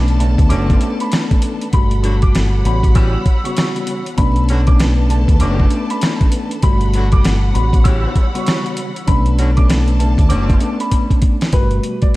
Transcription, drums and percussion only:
0.08 closed hi-hat
0.20 closed hi-hat
0.38 kick, closed hi-hat
0.50 closed hi-hat
0.70 kick, closed hi-hat
0.81 closed hi-hat
1.00 closed hi-hat
1.12 cross-stick, snare, closed hi-hat
1.31 kick, closed hi-hat
1.42 closed hi-hat
1.61 closed hi-hat
1.73 kick, closed hi-hat
1.91 closed hi-hat
2.04 closed hi-hat
2.22 kick, closed hi-hat
2.35 cross-stick, snare, closed hi-hat
2.65 closed hi-hat
2.83 kick, closed hi-hat
2.95 kick, closed hi-hat
3.26 kick, closed hi-hat
3.45 closed hi-hat
3.57 cross-stick, snare, closed hi-hat
3.76 closed hi-hat
3.87 closed hi-hat
4.06 closed hi-hat
4.18 kick, closed hi-hat
4.36 closed hi-hat
4.49 closed hi-hat
4.67 kick, closed hi-hat
4.80 cross-stick, snare, closed hi-hat
5.10 closed hi-hat
5.28 kick, closed hi-hat
5.40 closed hi-hat
5.60 kick
5.71 closed hi-hat
5.90 closed hi-hat
6.01 cross-stick, snare, closed hi-hat
6.21 kick, closed hi-hat
6.32 closed hi-hat
6.51 closed hi-hat
6.62 kick, closed hi-hat
6.81 closed hi-hat
6.94 closed hi-hat
7.12 kick, closed hi-hat
7.25 cross-stick, snare, closed hi-hat
7.55 closed hi-hat
7.73 kick, closed hi-hat
7.85 kick, closed hi-hat
8.16 kick, closed hi-hat
8.35 closed hi-hat
8.47 cross-stick, snare, closed hi-hat
8.66 closed hi-hat
8.77 closed hi-hat
8.96 closed hi-hat
9.08 kick, closed hi-hat
9.26 closed hi-hat
9.39 closed hi-hat
9.57 kick, closed hi-hat
9.70 cross-stick, snare, closed hi-hat
9.88 closed hi-hat
10.00 closed hi-hat
10.18 kick, closed hi-hat
10.30 closed hi-hat
10.50 kick, closed hi-hat
10.61 closed hi-hat
10.80 closed hi-hat
10.92 kick, closed hi-hat
11.11 kick, closed hi-hat
11.22 kick, closed hi-hat
11.41 snare, closed hi-hat
11.53 kick, closed hi-hat
11.71 closed hi-hat
11.83 closed hi-hat
12.02 kick, closed hi-hat

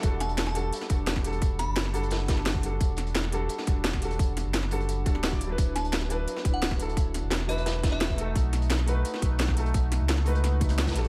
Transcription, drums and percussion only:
0.03 kick, closed hi-hat
0.20 snare, closed hi-hat
0.29 closed hi-hat
0.38 snare, closed hi-hat
0.47 snare
0.55 closed hi-hat
0.73 closed hi-hat
0.81 snare
0.89 kick, closed hi-hat
1.07 snare, closed hi-hat
1.16 kick, snare, closed hi-hat
1.24 closed hi-hat
1.33 closed hi-hat
1.42 kick, closed hi-hat
1.59 snare, closed hi-hat
1.76 snare, closed hi-hat
1.85 snare
1.94 closed hi-hat, open hi-hat
2.03 closed hi-hat
2.10 snare, closed hi-hat
2.28 kick, snare, closed hi-hat
2.37 snare
2.46 snare, closed hi-hat
2.55 kick
2.63 closed hi-hat
2.80 kick, closed hi-hat
2.97 snare, closed hi-hat
3.07 closed hi-hat
3.15 snare, closed hi-hat
3.24 snare
3.32 closed hi-hat
3.49 closed hi-hat
3.58 snare
3.67 kick, closed hi-hat
3.84 snare, closed hi-hat
3.93 kick, snare, closed hi-hat
4.02 closed hi-hat
4.11 closed hi-hat
4.19 kick, closed hi-hat
4.37 snare, closed hi-hat
4.54 snare, closed hi-hat
4.63 snare
4.71 closed hi-hat, open hi-hat
4.80 closed hi-hat
4.89 closed hi-hat
5.06 kick, closed hi-hat
5.15 snare
5.23 snare, closed hi-hat
5.32 kick
5.41 closed hi-hat
5.58 kick, closed hi-hat
5.76 snare, closed hi-hat
5.85 closed hi-hat
5.93 snare, closed hi-hat
6.02 snare
6.10 closed hi-hat
6.28 closed hi-hat
6.36 snare
6.45 kick, closed hi-hat
6.62 snare, closed hi-hat
6.71 kick, snare, closed hi-hat
6.80 closed hi-hat
6.89 closed hi-hat
6.97 kick, closed hi-hat
7.14 snare, closed hi-hat
7.30 snare, closed hi-hat
7.40 snare
7.49 closed hi-hat, open hi-hat
7.58 closed hi-hat
7.66 snare, closed hi-hat
7.83 kick, snare, closed hi-hat
7.92 snare
8.01 snare, closed hi-hat
8.10 kick
8.18 closed hi-hat
8.36 kick, closed hi-hat
8.53 snare, closed hi-hat
8.62 closed hi-hat
8.70 snare, closed hi-hat
8.79 snare
8.88 closed hi-hat
9.05 closed hi-hat
9.14 snare
9.22 kick, closed hi-hat
9.39 snare, closed hi-hat
9.48 kick, snare, closed hi-hat
9.57 closed hi-hat
9.66 closed hi-hat
9.74 kick, closed hi-hat
9.92 snare, closed hi-hat
10.09 snare, closed hi-hat
10.18 snare
10.26 closed hi-hat, open hi-hat
10.35 closed hi-hat
10.44 snare, closed hi-hat
10.61 kick, closed hi-hat
10.69 snare, closed hi-hat
10.78 snare, closed hi-hat
10.87 kick, snare, closed hi-hat
10.91 snare, closed hi-hat
10.95 closed hi-hat
11.04 closed hi-hat

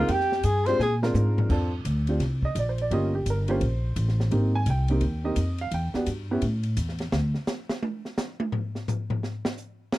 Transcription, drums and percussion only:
0.08 kick, ride
0.20 snare
0.32 snare
0.43 kick, hi-hat pedal, ride
0.66 snare, ride
0.80 snare
1.03 snare
1.15 hi-hat pedal, high tom
1.38 floor tom
1.50 kick, crash
1.85 kick, hi-hat pedal, ride
2.07 ride
2.20 kick, snare, ride
2.42 kick
2.55 kick, hi-hat pedal, ride
2.78 ride
2.91 kick, ride
3.26 kick, hi-hat pedal, ride
3.48 ride
3.61 kick, ride
3.96 kick, hi-hat pedal, ride
4.09 snare
4.20 snare
4.31 kick, ride
4.66 kick, hi-hat pedal, ride
4.88 ride
5.01 kick, ride
5.36 kick, hi-hat pedal, ride
5.58 ride
5.71 kick, ride
5.94 snare
6.06 kick, hi-hat pedal, ride
6.42 kick, ride
6.63 ride
6.77 kick, hi-hat pedal, ride
6.89 snare
6.99 snare, ride
7.12 snare
7.34 snare
7.47 snare, hi-hat pedal
7.69 snare
7.82 high tom
8.05 snare
8.17 snare, hi-hat pedal
8.40 high tom
8.52 floor tom
8.75 snare
8.88 floor tom, hi-hat pedal
9.10 floor tom
9.23 snare
9.45 snare
9.57 hi-hat pedal
9.92 snare

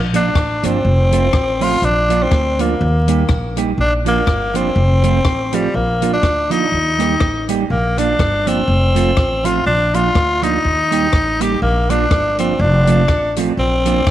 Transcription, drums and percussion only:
0.14 closed hi-hat
0.36 kick, cross-stick
0.63 closed hi-hat
1.12 closed hi-hat
1.33 kick, cross-stick
1.61 open hi-hat
1.82 hi-hat pedal
2.10 closed hi-hat
2.31 kick, cross-stick
2.59 closed hi-hat
3.08 closed hi-hat
3.29 kick, cross-stick
3.57 closed hi-hat
4.06 closed hi-hat
4.27 kick, cross-stick
4.55 closed hi-hat
5.04 closed hi-hat
5.25 kick, cross-stick
5.53 closed hi-hat
6.02 closed hi-hat
6.23 kick, cross-stick
6.51 closed hi-hat
7.00 closed hi-hat
7.20 kick, cross-stick
7.49 closed hi-hat
7.98 closed hi-hat
8.19 kick, cross-stick
8.47 closed hi-hat
8.96 closed hi-hat
9.17 kick, cross-stick
9.45 closed hi-hat
9.94 closed hi-hat
10.15 kick, cross-stick
10.43 closed hi-hat
10.92 closed hi-hat
11.13 kick, cross-stick
11.41 closed hi-hat
11.90 closed hi-hat
12.11 kick, cross-stick
12.39 closed hi-hat
12.87 closed hi-hat
13.08 kick, cross-stick
13.36 closed hi-hat
13.86 closed hi-hat
14.07 kick, cross-stick

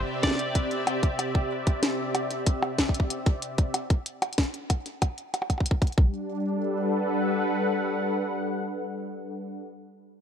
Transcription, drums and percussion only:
0.23 kick, snare, closed hi-hat
0.27 snare
0.31 snare
0.35 snare, closed hi-hat
0.55 kick, closed hi-hat
0.71 closed hi-hat
0.87 closed hi-hat, percussion blips
1.03 kick, closed hi-hat
1.19 closed hi-hat, percussion blips
1.35 kick
1.67 kick, closed hi-hat
1.83 snare, closed hi-hat
2.15 closed hi-hat, percussion blips
2.31 closed hi-hat
2.47 kick, closed hi-hat
2.63 percussion blips
2.78 kick, snare, closed hi-hat
2.89 kick
2.94 closed hi-hat
3.00 kick
3.10 closed hi-hat
3.26 kick, closed hi-hat
3.42 closed hi-hat
3.58 kick, closed hi-hat
3.74 closed hi-hat, percussion blips
3.90 kick, closed hi-hat
4.06 closed hi-hat
4.22 closed hi-hat, percussion blips
4.33 closed hi-hat
4.38 kick, snare, closed hi-hat
4.43 closed hi-hat
4.54 closed hi-hat
4.70 kick, closed hi-hat, percussion blips
4.86 closed hi-hat
5.02 kick, closed hi-hat, percussion blips
5.18 closed hi-hat
5.34 closed hi-hat, percussion blips
5.42 percussion blips
5.50 kick, closed hi-hat, percussion blips
5.58 kick, percussion blips
5.66 closed hi-hat
5.71 kick
5.82 kick, closed hi-hat
5.87 closed hi-hat
5.92 closed hi-hat
5.98 kick

